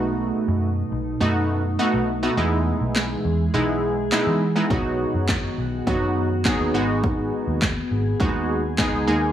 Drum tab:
CP |--------|--x---x-|--x---x-|--x---x-|
SD |--------|--o---o-|--o---o-|--o---o-|
BD |--------|--------|o-o-o-o-|o-o-o-o-|